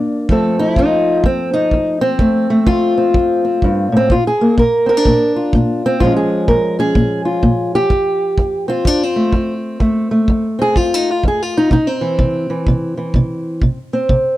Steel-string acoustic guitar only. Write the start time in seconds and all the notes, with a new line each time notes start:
Already playing: A#2 A#3 D4
0.30 F2 F3 A3 C4 A4
0.59 E4
0.78 F2 D#4
0.82 F4
1.25 F2 C4
1.54 D#4
1.73 F2
2.01 C4
2.19 F2 A3
2.50 A3
2.67 F2 F4
2.97 C4
3.15 F2
3.45 C4
3.64 G2
3.92 A2
3.97 C4
4.11 A#2 F4
4.27 G#4
4.41 A#3
4.57 A#2 A#4
4.86 C4 A#4
4.97 D4
5.07 A#2
5.36 F4
5.55 A#2
5.86 C4
6.00 A#2 F3 G#3 F4
6.05 C#4
6.17 G#4
6.48 A#2 A#4
6.79 C#4 G#4
6.96 A#2
7.25 F4
7.43 A#2
7.75 G4
7.91 F2
8.39 F2
8.68 C4 F4
8.85 F2 D4
9.03 C4
9.16 A3
9.33 F2
9.80 F2 A3
10.11 A3
10.30 F2
10.59 C4 G#4
10.77 F2 F4
10.94 D#4
11.10 F4
11.25 F2 G#4
11.43 F4
11.57 D#4
11.72 C3 D#4
11.87 C4
12.01 E3
12.20 C3
12.50 E3
12.68 C3
12.97 E3
13.16 C3
13.63 C3
13.93 C4
14.10 C3